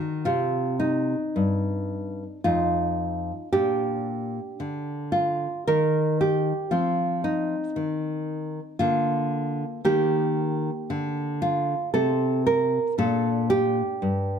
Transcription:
0, 0, Header, 1, 2, 480
1, 0, Start_track
1, 0, Tempo, 1084991
1, 116, Time_signature, 3, 2, 24, 8
1, 2514, Tempo, 1041667
1, 6528, End_track
2, 0, Start_track
2, 0, Title_t, "Nylon-string guitar"
2, 0, Program_c, 0, 24
2, 0, Note_on_c, 0, 51, 49
2, 0, Note_on_c, 0, 66, 62
2, 104, Note_off_c, 0, 66, 0
2, 108, Note_off_c, 0, 51, 0
2, 111, Note_on_c, 0, 65, 83
2, 114, Note_on_c, 0, 48, 71
2, 115, Note_on_c, 0, 60, 45
2, 349, Note_off_c, 0, 65, 0
2, 352, Note_on_c, 0, 63, 82
2, 506, Note_off_c, 0, 48, 0
2, 601, Note_on_c, 0, 43, 54
2, 985, Note_off_c, 0, 43, 0
2, 1061, Note_off_c, 0, 63, 0
2, 1065, Note_off_c, 0, 60, 0
2, 1081, Note_on_c, 0, 65, 81
2, 1083, Note_on_c, 0, 41, 64
2, 1085, Note_on_c, 0, 63, 46
2, 1464, Note_off_c, 0, 41, 0
2, 1540, Note_off_c, 0, 65, 0
2, 1542, Note_off_c, 0, 63, 0
2, 1560, Note_on_c, 0, 46, 68
2, 1560, Note_on_c, 0, 67, 89
2, 1564, Note_on_c, 0, 62, 49
2, 1940, Note_off_c, 0, 46, 0
2, 2034, Note_on_c, 0, 50, 56
2, 2257, Note_off_c, 0, 67, 0
2, 2265, Note_on_c, 0, 65, 84
2, 2418, Note_off_c, 0, 50, 0
2, 2499, Note_off_c, 0, 65, 0
2, 2510, Note_on_c, 0, 70, 91
2, 2513, Note_on_c, 0, 51, 74
2, 2746, Note_off_c, 0, 70, 0
2, 2756, Note_on_c, 0, 67, 85
2, 2900, Note_off_c, 0, 51, 0
2, 2980, Note_off_c, 0, 62, 0
2, 2986, Note_off_c, 0, 67, 0
2, 2987, Note_on_c, 0, 65, 75
2, 2989, Note_on_c, 0, 53, 70
2, 2993, Note_on_c, 0, 60, 51
2, 3219, Note_off_c, 0, 65, 0
2, 3232, Note_on_c, 0, 63, 85
2, 3373, Note_off_c, 0, 53, 0
2, 3471, Note_on_c, 0, 51, 60
2, 3855, Note_off_c, 0, 51, 0
2, 3930, Note_off_c, 0, 60, 0
2, 3931, Note_off_c, 0, 63, 0
2, 3947, Note_on_c, 0, 65, 94
2, 3951, Note_on_c, 0, 50, 70
2, 3952, Note_on_c, 0, 58, 55
2, 4335, Note_off_c, 0, 50, 0
2, 4411, Note_off_c, 0, 65, 0
2, 4413, Note_off_c, 0, 58, 0
2, 4432, Note_on_c, 0, 51, 73
2, 4434, Note_on_c, 0, 58, 58
2, 4435, Note_on_c, 0, 67, 101
2, 4823, Note_off_c, 0, 51, 0
2, 4918, Note_on_c, 0, 50, 67
2, 5144, Note_off_c, 0, 67, 0
2, 5157, Note_on_c, 0, 65, 86
2, 5304, Note_off_c, 0, 50, 0
2, 5384, Note_off_c, 0, 58, 0
2, 5389, Note_off_c, 0, 65, 0
2, 5396, Note_on_c, 0, 69, 93
2, 5398, Note_on_c, 0, 48, 67
2, 5400, Note_on_c, 0, 60, 57
2, 5629, Note_off_c, 0, 69, 0
2, 5639, Note_on_c, 0, 70, 97
2, 5785, Note_off_c, 0, 48, 0
2, 5864, Note_off_c, 0, 60, 0
2, 5872, Note_off_c, 0, 70, 0
2, 5876, Note_on_c, 0, 62, 56
2, 5879, Note_on_c, 0, 46, 84
2, 5879, Note_on_c, 0, 69, 88
2, 6109, Note_off_c, 0, 69, 0
2, 6116, Note_on_c, 0, 67, 106
2, 6259, Note_off_c, 0, 46, 0
2, 6356, Note_on_c, 0, 43, 62
2, 6528, Note_off_c, 0, 43, 0
2, 6528, Note_off_c, 0, 62, 0
2, 6528, Note_off_c, 0, 67, 0
2, 6528, End_track
0, 0, End_of_file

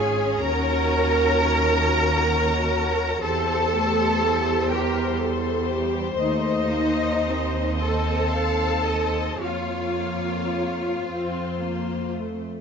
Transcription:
0, 0, Header, 1, 6, 480
1, 0, Start_track
1, 0, Tempo, 956938
1, 182, Time_signature, 6, 3, 24, 8
1, 1621, Tempo, 983607
1, 3061, Tempo, 1083032
1, 5909, End_track
2, 0, Start_track
2, 0, Title_t, "Violin section"
2, 0, Program_c, 0, 48
2, 0, Note_on_c, 0, 80, 91
2, 183, Note_off_c, 0, 80, 0
2, 185, Note_on_c, 0, 82, 106
2, 1602, Note_off_c, 0, 82, 0
2, 1618, Note_on_c, 0, 81, 99
2, 2321, Note_off_c, 0, 81, 0
2, 2333, Note_on_c, 0, 79, 76
2, 2574, Note_off_c, 0, 79, 0
2, 3051, Note_on_c, 0, 75, 84
2, 3754, Note_off_c, 0, 75, 0
2, 3771, Note_on_c, 0, 81, 81
2, 4496, Note_on_c, 0, 77, 65
2, 4498, Note_off_c, 0, 81, 0
2, 5686, Note_off_c, 0, 77, 0
2, 5909, End_track
3, 0, Start_track
3, 0, Title_t, "Violin section"
3, 0, Program_c, 1, 48
3, 0, Note_on_c, 1, 73, 61
3, 1620, Note_off_c, 1, 73, 0
3, 1620, Note_on_c, 1, 72, 72
3, 3758, Note_off_c, 1, 72, 0
3, 3774, Note_on_c, 1, 75, 51
3, 4005, Note_on_c, 1, 77, 55
3, 4008, Note_off_c, 1, 75, 0
3, 4249, Note_off_c, 1, 77, 0
3, 4252, Note_on_c, 1, 75, 49
3, 4496, Note_on_c, 1, 73, 53
3, 4500, Note_off_c, 1, 75, 0
3, 5211, Note_off_c, 1, 73, 0
3, 5234, Note_on_c, 1, 72, 45
3, 5846, Note_off_c, 1, 72, 0
3, 5909, End_track
4, 0, Start_track
4, 0, Title_t, "Cello section"
4, 0, Program_c, 2, 48
4, 0, Note_on_c, 2, 68, 92
4, 183, Note_off_c, 2, 68, 0
4, 188, Note_on_c, 2, 70, 104
4, 1622, Note_on_c, 2, 69, 103
4, 1623, Note_off_c, 2, 70, 0
4, 2323, Note_off_c, 2, 69, 0
4, 2342, Note_on_c, 2, 67, 84
4, 2578, Note_off_c, 2, 67, 0
4, 3064, Note_on_c, 2, 63, 91
4, 3760, Note_off_c, 2, 63, 0
4, 3784, Note_on_c, 2, 69, 84
4, 4502, Note_on_c, 2, 65, 72
4, 4504, Note_off_c, 2, 69, 0
4, 5707, Note_off_c, 2, 65, 0
4, 5909, End_track
5, 0, Start_track
5, 0, Title_t, "Viola section"
5, 0, Program_c, 3, 48
5, 0, Note_on_c, 3, 61, 68
5, 0, Note_on_c, 3, 65, 67
5, 185, Note_off_c, 3, 65, 0
5, 193, Note_on_c, 3, 66, 68
5, 894, Note_off_c, 3, 66, 0
5, 900, Note_on_c, 3, 66, 72
5, 1607, Note_off_c, 3, 66, 0
5, 1618, Note_on_c, 3, 60, 68
5, 1618, Note_on_c, 3, 67, 73
5, 1625, Note_off_c, 3, 61, 0
5, 1859, Note_off_c, 3, 60, 0
5, 1866, Note_on_c, 3, 57, 70
5, 2097, Note_off_c, 3, 57, 0
5, 2100, Note_on_c, 3, 55, 65
5, 2321, Note_off_c, 3, 67, 0
5, 2326, Note_off_c, 3, 55, 0
5, 2332, Note_on_c, 3, 55, 68
5, 2334, Note_on_c, 3, 70, 71
5, 2573, Note_on_c, 3, 69, 64
5, 2575, Note_off_c, 3, 70, 0
5, 2810, Note_on_c, 3, 67, 75
5, 2815, Note_off_c, 3, 69, 0
5, 3043, Note_off_c, 3, 55, 0
5, 3055, Note_on_c, 3, 57, 63
5, 3055, Note_on_c, 3, 72, 60
5, 3057, Note_off_c, 3, 67, 0
5, 3284, Note_off_c, 3, 57, 0
5, 3298, Note_on_c, 3, 58, 66
5, 3535, Note_on_c, 3, 60, 58
5, 3537, Note_off_c, 3, 58, 0
5, 4481, Note_off_c, 3, 72, 0
5, 4501, Note_off_c, 3, 60, 0
5, 4503, Note_on_c, 3, 65, 54
5, 4504, Note_on_c, 3, 58, 53
5, 5214, Note_off_c, 3, 65, 0
5, 5230, Note_off_c, 3, 58, 0
5, 5232, Note_on_c, 3, 60, 57
5, 5451, Note_off_c, 3, 60, 0
5, 5463, Note_on_c, 3, 58, 56
5, 5701, Note_on_c, 3, 57, 53
5, 5705, Note_off_c, 3, 58, 0
5, 5909, Note_off_c, 3, 57, 0
5, 5909, End_track
6, 0, Start_track
6, 0, Title_t, "Double bass section"
6, 0, Program_c, 4, 48
6, 0, Note_on_c, 4, 32, 69
6, 181, Note_off_c, 4, 32, 0
6, 184, Note_on_c, 4, 39, 79
6, 1622, Note_off_c, 4, 39, 0
6, 1623, Note_on_c, 4, 40, 78
6, 3042, Note_off_c, 4, 40, 0
6, 3063, Note_on_c, 4, 39, 72
6, 4484, Note_off_c, 4, 39, 0
6, 4497, Note_on_c, 4, 41, 58
6, 5211, Note_off_c, 4, 41, 0
6, 5222, Note_on_c, 4, 41, 47
6, 5828, Note_off_c, 4, 41, 0
6, 5909, End_track
0, 0, End_of_file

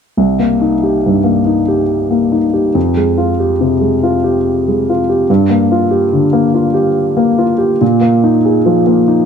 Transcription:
0, 0, Header, 1, 2, 480
1, 0, Start_track
1, 0, Key_signature, -3, "minor"
1, 0, Tempo, 855920
1, 106, Time_signature, 3, 2, 24, 8
1, 2024, Tempo, 839161
1, 3944, Tempo, 855920
1, 5228, End_track
2, 0, Start_track
2, 0, Title_t, "Upright piano"
2, 0, Program_c, 0, 0
2, 97, Note_on_c, 0, 36, 42
2, 209, Control_c, 0, 64, 127
2, 221, Note_on_c, 0, 58, 27
2, 344, Note_on_c, 0, 63, 34
2, 419, Note_off_c, 0, 58, 0
2, 468, Note_on_c, 0, 67, 34
2, 541, Note_off_c, 0, 63, 0
2, 594, Note_on_c, 0, 43, 33
2, 662, Note_off_c, 0, 67, 0
2, 694, Note_on_c, 0, 58, 34
2, 785, Note_off_c, 0, 43, 0
2, 821, Note_on_c, 0, 63, 34
2, 895, Note_off_c, 0, 58, 0
2, 943, Note_on_c, 0, 67, 36
2, 1017, Note_off_c, 0, 63, 0
2, 1182, Note_on_c, 0, 58, 34
2, 1301, Note_on_c, 0, 63, 32
2, 1328, Note_off_c, 0, 67, 0
2, 1376, Note_off_c, 0, 58, 0
2, 1422, Note_on_c, 0, 67, 32
2, 1495, Note_off_c, 0, 63, 0
2, 1519, Note_off_c, 0, 36, 0
2, 1541, Note_on_c, 0, 41, 44
2, 1543, Note_off_c, 0, 67, 0
2, 1555, Control_c, 0, 64, 0
2, 1639, Control_c, 0, 64, 127
2, 1665, Note_on_c, 0, 56, 36
2, 1781, Note_on_c, 0, 65, 39
2, 1856, Note_off_c, 0, 56, 0
2, 1905, Note_on_c, 0, 67, 37
2, 1974, Note_off_c, 0, 65, 0
2, 2022, Note_on_c, 0, 48, 38
2, 2097, Note_off_c, 0, 67, 0
2, 2139, Note_on_c, 0, 56, 37
2, 2217, Note_off_c, 0, 48, 0
2, 2266, Note_on_c, 0, 65, 40
2, 2335, Note_off_c, 0, 56, 0
2, 2385, Note_on_c, 0, 67, 37
2, 2458, Note_off_c, 0, 65, 0
2, 2637, Note_on_c, 0, 56, 39
2, 2759, Note_on_c, 0, 65, 39
2, 2769, Note_off_c, 0, 67, 0
2, 2823, Note_off_c, 0, 56, 0
2, 2873, Note_on_c, 0, 67, 38
2, 2943, Note_off_c, 0, 65, 0
2, 2959, Note_off_c, 0, 41, 0
2, 2988, Note_off_c, 0, 67, 0
2, 2989, Note_on_c, 0, 43, 52
2, 2992, Control_c, 0, 64, 0
2, 3072, Control_c, 0, 64, 127
2, 3104, Note_on_c, 0, 58, 39
2, 3230, Note_on_c, 0, 65, 43
2, 3295, Note_off_c, 0, 58, 0
2, 3340, Note_on_c, 0, 67, 42
2, 3417, Note_off_c, 0, 65, 0
2, 3464, Note_on_c, 0, 50, 40
2, 3533, Note_off_c, 0, 67, 0
2, 3580, Note_on_c, 0, 58, 41
2, 3655, Note_off_c, 0, 50, 0
2, 3701, Note_on_c, 0, 65, 44
2, 3773, Note_off_c, 0, 58, 0
2, 3815, Note_on_c, 0, 67, 41
2, 3894, Note_off_c, 0, 65, 0
2, 4057, Note_on_c, 0, 58, 42
2, 4177, Note_on_c, 0, 65, 43
2, 4199, Note_off_c, 0, 67, 0
2, 4248, Note_off_c, 0, 58, 0
2, 4289, Note_on_c, 0, 67, 44
2, 4368, Note_off_c, 0, 65, 0
2, 4397, Note_off_c, 0, 43, 0
2, 4413, Note_off_c, 0, 67, 0
2, 4418, Note_on_c, 0, 46, 51
2, 4428, Control_c, 0, 64, 0
2, 4512, Control_c, 0, 64, 127
2, 4529, Note_on_c, 0, 58, 38
2, 4657, Note_on_c, 0, 63, 44
2, 4725, Note_off_c, 0, 58, 0
2, 4778, Note_on_c, 0, 68, 39
2, 4849, Note_off_c, 0, 63, 0
2, 4893, Note_on_c, 0, 53, 42
2, 4971, Note_off_c, 0, 68, 0
2, 5010, Note_on_c, 0, 58, 38
2, 5089, Note_off_c, 0, 53, 0
2, 5129, Note_on_c, 0, 63, 40
2, 5210, Note_off_c, 0, 58, 0
2, 5228, Note_off_c, 0, 46, 0
2, 5228, Note_off_c, 0, 63, 0
2, 5228, End_track
0, 0, End_of_file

